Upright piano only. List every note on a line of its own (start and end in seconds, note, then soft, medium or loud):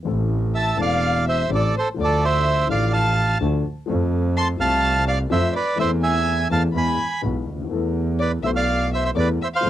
0.03 0.75 A1 medium
0.03 0.75 A2 medium
0.03 0.73 E3 medium
0.03 0.74 A3 medium
0.03 0.75 C4 medium
0.07 0.76 A4 medium
0.75 1.46 E1 medium
0.75 1.46 E2 medium
0.75 1.45 E3 medium
0.75 1.46 A3 soft
0.75 1.47 C4 soft
0.75 1.47 A4 medium
1.49 1.70 A1 medium
1.49 1.70 A2 medium
1.49 1.70 E3 medium
1.49 1.70 A3 medium
1.49 1.70 C4 medium
1.49 1.70 A4 medium
1.94 2.65 D2 medium
1.94 2.65 D3 medium
1.94 2.64 F3 medium
1.94 2.65 A3 medium
1.94 2.66 D4 medium
1.99 2.66 A4 medium
2.67 3.37 A1 medium
2.67 3.37 A2 medium
2.67 3.36 F3 medium
2.67 3.37 A3 medium
2.67 3.37 D4 soft
2.67 3.38 A4 medium
3.40 3.61 D2 medium
3.40 3.61 D3 medium
3.40 3.61 F3 medium
3.40 3.61 A3 medium
3.40 3.61 D4 medium
3.40 3.61 A4 medium
3.86 4.56 F2 medium
3.86 4.55 F3 medium
3.86 4.56 A3 medium
3.86 4.57 C4 medium
3.86 4.57 A4 medium
4.57 5.27 C2 medium
4.57 5.28 C3 medium
4.57 5.26 F3 medium
4.57 5.28 A3 medium
4.57 5.28 C4 medium
4.61 5.29 A4 medium
5.30 5.51 F2 medium
5.30 5.51 F3 medium
5.30 5.51 A3 medium
5.30 5.51 C4 medium
5.30 5.51 A4 medium
5.75 6.47 E2 medium
5.75 6.47 E3 medium
5.75 6.46 A3 medium
5.75 6.47 C4 medium
5.80 6.48 A4 medium
6.50 6.71 E2 medium
6.50 6.71 E3 medium
6.50 6.72 A3 medium
6.50 6.71 C4 soft
6.50 6.72 A4 medium
6.74 6.95 E2 medium
6.74 6.95 E3 medium
6.74 6.95 G#3 medium
6.74 6.95 B3 medium
6.74 6.96 G#4 medium
7.21 7.44 B1 medium
7.21 7.43 B2 medium
7.21 7.43 E3 medium
7.21 7.43 G#3 medium
7.21 7.43 B3 medium
7.21 7.43 G#4 medium
7.53 7.60 C#2 soft
7.59 7.66 D2 soft
7.65 7.71 D#2 medium
7.69 8.40 E2 medium
7.69 8.40 E3 medium
7.69 8.40 A3 medium
7.69 8.41 B3 medium
7.69 8.41 A4 medium
8.42 9.12 B1 medium
8.42 9.12 B2 medium
8.42 9.11 E3 medium
8.42 9.12 A3 soft
8.42 9.13 B3 medium
8.42 9.13 A4 medium
9.15 9.36 E2 medium
9.15 9.36 E3 medium
9.15 9.36 A3 medium
9.15 9.36 B3 medium
9.15 9.36 A4 medium
9.61 9.70 F2 medium
9.61 9.70 F3 medium
9.61 9.70 A3 medium
9.61 9.70 C4 medium
9.65 9.70 A4 medium